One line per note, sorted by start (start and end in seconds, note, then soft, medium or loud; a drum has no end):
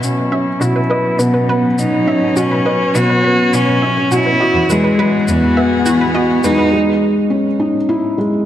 0.00 4.40 B2 medium
0.00 0.23 B2 medium
0.00 0.63 C#4 medium
0.00 1.41 E4 medium
0.00 shaker medium
0.09 4.40 F#3 medium
0.32 0.49 C#4 medium
0.32 0.39 E5 medium
0.61 0.81 B2 medium
0.61 1.22 E4 loud
0.61 0.78 F#4 medium
0.61 0.68 F#4 medium
0.61 shaker medium
0.76 0.80 B4 medium
0.84 5.33 C#4 medium
0.90 1.18 B4 medium
0.90 1.01 D#5 medium
1.19 1.39 B2 medium
1.19 1.47 B3 medium
1.19 1.80 B3 loud
1.19 1.30 B4 medium
1.19 shaker medium
1.34 1.45 B4 medium
1.48 1.65 B3 medium
1.48 1.56 B4 medium
1.78 1.98 B2 medium
1.78 2.39 D#4 loud
1.78 shaker medium
1.85 5.34 C#5 medium
2.07 2.23 C#4 medium
2.07 2.14 E5 medium
2.22 2.31 B2 medium
2.36 2.56 B2 medium
2.36 2.98 C#4 medium
2.36 2.53 F#4 medium
2.36 2.43 F#4 medium
2.36 shaker medium
2.51 2.55 B4 medium
2.65 2.93 B4 medium
2.65 2.76 D#5 medium
2.94 3.14 B2 medium
2.94 3.22 B3 medium
2.94 3.56 F#4 loud
2.94 3.05 B4 medium
2.94 shaker medium
3.10 3.20 B4 medium
3.24 3.40 B3 medium
3.24 3.31 B4 medium
3.53 3.73 B2 medium
3.53 4.14 C#4 loud
3.53 shaker medium
3.82 3.98 C#4 medium
3.82 3.89 E5 medium
3.97 mid tom medium
4.11 4.31 B2 medium
4.11 4.73 E4 loud
4.11 4.28 F#4 medium
4.11 4.18 F#4 loud
4.11 shaker medium
4.26 4.30 B4 medium
4.40 6.73 E3 medium
4.40 4.68 F#4 loud
4.40 4.51 D#5 medium
4.55 4.65 E2 medium
4.55 mid tom medium
4.70 4.89 E2 medium
4.70 4.97 G#3 medium
4.70 5.30 G#3 medium
4.70 4.80 B4 medium
4.70 shaker medium
4.84 4.94 B4 medium
4.98 5.15 G#3 medium
4.98 5.06 B4 loud
5.06 6.73 B3 medium
5.06 6.74 F#4 medium
5.28 5.48 E2 medium
5.28 5.86 B3 loud
5.28 shaker medium
5.47 6.74 G#4 medium
5.57 5.73 B3 medium
5.57 5.64 E5 medium
5.86 6.06 E2 medium
5.86 6.47 B3 loud
5.86 6.02 E4 medium
5.86 5.93 F#4 loud
5.86 shaker medium
6.01 6.05 B4 medium
6.15 6.42 F#4 medium
6.15 6.25 D#5 medium
6.44 6.64 E2 medium
6.44 6.71 G#3 medium
6.44 6.74 D#4 loud
6.44 6.55 B4 medium
6.44 shaker medium
6.58 6.69 B4 medium
6.72 6.89 G#3 medium
7.30 7.47 C#4 medium
7.59 7.76 D#4 medium
7.89 8.17 E4 medium
8.18 8.45 G#3 medium